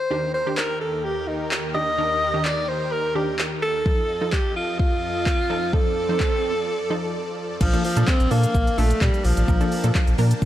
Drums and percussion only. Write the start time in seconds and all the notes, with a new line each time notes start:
0.58 snare, clap
1.52 snare, clap
2.45 snare, clap
3.39 snare, clap
3.86 kick
4.33 kick, snare, clap
4.80 kick
5.26 kick, snare, clap
5.73 kick
6.20 kick, snare, clap
7.61 kick, crash, shaker
7.73 closed hi-hat, shaker
7.84 open hi-hat, shaker
7.96 closed hi-hat, shaker
8.08 kick, snare, clap, shaker
8.20 closed hi-hat, shaker
8.31 open hi-hat, shaker
8.43 closed hi-hat, shaker
8.54 kick, shaker
8.67 closed hi-hat, shaker
8.78 open hi-hat, shaker
8.90 closed hi-hat, shaker
9.01 kick, snare, clap, shaker
9.14 closed hi-hat, shaker
9.24 open hi-hat, shaker
9.37 closed hi-hat, shaker
9.48 kick, shaker
9.61 closed hi-hat, shaker
9.72 open hi-hat, shaker
9.84 closed hi-hat, shaker
9.95 kick, snare, clap, shaker
10.07 closed hi-hat, shaker
10.18 open hi-hat, shaker
10.31 closed hi-hat, shaker
10.42 kick, shaker